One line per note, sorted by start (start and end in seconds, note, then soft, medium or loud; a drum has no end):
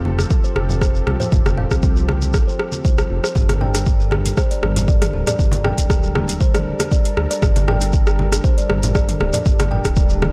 0.00 0.25 F1 loud
0.00 3.32 F3 medium
0.00 3.32 C4 medium
0.00 3.32 G4 medium
0.00 3.32 A4 medium
0.05 0.17 F4 medium
0.05 high conga medium
0.19 cross-stick medium
0.19 high conga medium
0.19 shekere medium
0.30 0.43 A4 loud
0.30 kick loud
0.30 shekere medium
0.44 0.55 C5 medium
0.44 shekere soft
0.56 1.02 F1 medium
0.56 cross-stick medium
0.56 high conga medium
0.69 0.81 F4 medium
0.69 low conga medium
0.69 shekere medium
0.81 0.94 C5 medium
0.81 kick loud
0.81 cross-stick medium
0.81 shekere medium
0.95 shekere soft
1.06 1.17 C2 medium
1.06 1.19 F4 medium
1.06 cross-stick medium
1.06 high conga medium
1.20 1.27 C5 medium
1.20 low conga medium
1.20 shekere medium
1.32 1.65 F1 loud
1.32 1.44 F4 medium
1.32 kick loud
1.32 low conga medium
1.32 shekere medium
1.46 cross-stick medium
1.46 high conga loud
1.46 shekere soft
1.57 1.65 F5 medium
1.57 low conga medium
1.71 2.33 C2 medium
1.71 1.82 C4 medium
1.71 kick medium
1.71 cross-stick medium
1.71 high conga soft
1.71 shekere medium
1.82 kick loud
1.82 shekere medium
1.96 2.07 F4 medium
1.96 shekere soft
2.08 2.21 F4 medium
2.08 cross-stick medium
2.08 high conga medium
2.22 high conga medium
2.22 shekere medium
2.34 2.44 A1 medium
2.34 2.46 A4 medium
2.34 kick loud
2.34 cross-stick medium
2.34 shekere medium
2.47 2.58 C5 medium
2.47 shekere soft
2.59 cross-stick medium
2.72 2.84 F4 medium
2.72 high conga medium
2.72 shekere medium
2.85 3.04 C2 medium
2.85 2.98 C5 medium
2.85 kick loud
2.85 shekere medium
2.98 cross-stick medium
2.98 shekere soft
3.10 3.20 F1 medium
3.10 3.22 F4 medium
3.24 3.30 C5 medium
3.24 cross-stick medium
3.24 shekere medium
3.35 4.32 G1 loud
3.35 10.32 G3 medium
3.35 10.32 D4 medium
3.35 3.48 G4 medium
3.35 10.32 A4 medium
3.35 10.32 A#4 medium
3.35 kick loud
3.35 low conga medium
3.35 shekere medium
3.49 cross-stick medium
3.49 closed hi-hat soft
3.49 high conga loud
3.49 shekere soft
3.61 3.68 G5 medium
3.61 low conga loud
3.75 3.85 D4 medium
3.75 cross-stick medium
3.75 closed hi-hat medium
3.75 shekere medium
3.86 kick loud
3.86 shekere medium
4.00 4.11 G4 medium
4.00 shekere soft
4.11 4.24 G4 medium
4.11 cross-stick medium
4.11 high conga medium
4.25 closed hi-hat medium
4.25 high conga medium
4.25 shekere medium
4.37 4.50 C5 medium
4.37 kick loud
4.37 cross-stick medium
4.37 shekere medium
4.51 4.62 D5 medium
4.51 closed hi-hat soft
4.51 shekere soft
4.62 5.08 G1 medium
4.62 cross-stick medium
4.62 mid tom medium
4.62 high conga medium
4.76 4.88 G4 medium
4.76 closed hi-hat medium
4.76 low conga medium
4.76 shekere medium
4.88 5.01 D5 medium
4.88 kick loud
4.88 shekere medium
5.02 cross-stick medium
5.02 closed hi-hat soft
5.02 mid tom medium
5.02 shekere soft
5.13 5.23 D1 medium
5.13 5.26 G4 medium
5.13 high conga medium
5.27 5.34 D5 loud
5.27 cross-stick medium
5.27 closed hi-hat medium
5.27 low conga medium
5.27 shekere medium
5.39 5.72 G1 loud
5.39 5.51 G4 medium
5.39 kick loud
5.39 shekere medium
5.52 closed hi-hat soft
5.52 high conga loud
5.52 shekere soft
5.64 5.72 G5 medium
5.64 cross-stick medium
5.64 low conga medium
5.78 6.74 D1 medium
5.78 5.89 D4 medium
5.78 kick medium
5.78 closed hi-hat medium
5.78 shekere medium
5.90 kick loud
5.90 cross-stick medium
5.90 shekere medium
6.03 6.14 G4 medium
6.03 shekere soft
6.15 6.27 G4 medium
6.15 cross-stick medium
6.15 mid tom medium
6.15 high conga medium
6.28 closed hi-hat medium
6.28 high conga medium
6.28 shekere medium
6.40 6.53 C5 loud
6.40 kick loud
6.40 shekere medium
6.54 6.65 D5 medium
6.54 cross-stick medium
6.54 closed hi-hat soft
6.54 mid tom medium
6.54 shekere soft
6.79 6.91 G4 medium
6.79 cross-stick medium
6.79 closed hi-hat medium
6.79 high conga medium
6.79 shekere medium
6.91 7.04 D5 medium
6.91 kick loud
6.91 shekere medium
7.05 closed hi-hat soft
7.05 shekere soft
7.17 7.27 D2 medium
7.17 7.29 G4 medium
7.17 cross-stick medium
7.30 7.37 D5 medium
7.30 closed hi-hat medium
7.30 shekere medium
7.42 8.39 G1 loud
7.42 7.55 G4 medium
7.42 kick loud
7.42 cross-stick medium
7.42 low conga medium
7.42 shekere medium
7.56 closed hi-hat soft
7.56 high conga loud
7.56 shekere soft
7.68 7.75 G5 loud
7.68 cross-stick medium
7.68 low conga loud
7.81 7.92 D4 loud
7.81 closed hi-hat medium
7.81 shekere medium
7.93 kick loud
7.93 shekere medium
8.07 8.18 G4 medium
8.07 cross-stick medium
8.07 shekere soft
8.19 8.31 G4 medium
8.19 high conga medium
8.32 cross-stick medium
8.32 closed hi-hat medium
8.32 high conga medium
8.32 shekere medium
8.44 8.56 C5 loud
8.44 kick loud
8.44 shekere medium
8.58 8.68 D5 medium
8.58 closed hi-hat soft
8.58 shekere soft
8.69 9.15 G1 medium
8.69 cross-stick medium
8.69 mid tom medium
8.69 high conga medium
8.83 8.94 G4 medium
8.83 closed hi-hat medium
8.83 low conga medium
8.83 shekere medium
8.95 9.08 D5 medium
8.95 kick loud
8.95 cross-stick medium
8.95 shekere medium
9.09 closed hi-hat soft
9.09 mid tom medium
9.09 shekere soft
9.20 9.30 D1 loud
9.20 9.32 G4 medium
9.20 cross-stick medium
9.20 high conga medium
9.33 9.40 D5 loud
9.33 closed hi-hat medium
9.33 low conga medium
9.33 shekere medium
9.45 9.79 G1 loud
9.45 9.58 G4 loud
9.45 kick loud
9.45 shekere medium
9.59 cross-stick medium
9.59 closed hi-hat soft
9.59 high conga loud
9.59 shekere soft
9.71 9.78 G5 medium
9.71 low conga medium
9.84 10.32 D1 loud
9.84 9.95 D4 medium
9.84 kick medium
9.84 cross-stick medium
9.84 closed hi-hat soft
9.84 shekere medium
9.96 kick loud
9.96 shekere medium
10.09 10.21 G4 medium
10.09 shekere soft
10.22 10.32 G4 medium
10.22 cross-stick medium
10.22 mid tom medium
10.22 high conga medium